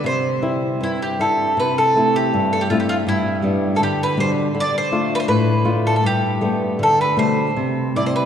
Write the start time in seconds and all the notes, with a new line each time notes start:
0.04 C3 C5
0.42 G3 C4 E4
0.81 G2 E4
1.02 G4
1.19 G3 C4 E4 A4
1.57 C3 B4
1.78 A4
1.96 A3 C4 E4
2.16 G4
2.34 G2
2.53 A4
2.61 G4
2.70 A3 C4 E4 F4
2.80 G4
2.89 F4
3.07 G2 E4
3.42 G3 B3 D4
3.76 D3 A4
3.83 G4
4.03 B4
4.17 B2 G3 D4 C5
4.55 D3
4.60 D5
4.78 C5
4.92 A3 D4 F4
5.15 B4
5.20 C5
5.28 A2 B4
5.65 A3 D4 F4
5.87 A4
5.96 A4
6.04 G2 G4
6.41 G3 A3 B3
6.79 D3
6.83 A4
7.01 B4
7.17 B2 G3 A3 C5
7.56 C3
7.96 G3 C4 E4 D5
8.06 C5
8.16 B4